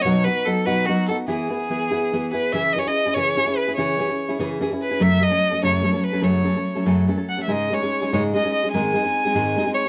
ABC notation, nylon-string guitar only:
X:1
M:6/8
L:1/16
Q:3/8=97
K:E
V:1 name="Nylon-string guitar"
[B,,F,B,DF]2 [B,DF]2 [F,B,DF]2 [B,,F,B,DF]2 [F,B,DF]2 [B,DF]2 | [E,B,EG]2 [B,EG]2 [E,B,EG]2 [E,B,EG]2 [E,B,EG]2 [B,EG]2 | [K:C#m] [C,E,CEG]2 [E,CEG] [CEG]2 [CEG] [C,E,CEG]2 [E,CEG] [CEG]2 [CEG] | [C,E,CEG]2 [E,CEG] [CEG]2 [CEG] [C,E,CEG]2 [E,CEG] [CEG]2 [CEG] |
[F,,C,F,A,CA]2 [F,A,CA] [F,A,CA]2 [F,A,CA] [F,,C,F,A,CA]2 [F,A,CA] [F,A,CA]2 [F,A,CA] | [F,,C,F,A,CA]2 [F,A,CA] [F,A,CA]2 [F,A,CA] [F,,C,F,A,CA]2 [F,A,CA] [F,A,CA]2 [F,A,CA] | [G,,C,G,CDG]2 [G,CDG] [G,CDG]2 [G,CDG] [G,,C,G,CDG]2 [G,CDG] [G,CDG]2 [G,CDG] | [G,,D,G,^B,DG]2 [G,B,DG] [G,B,DG]2 [G,B,DG] [G,,D,G,B,DG]2 [G,B,DG] [G,B,DG]2 z |]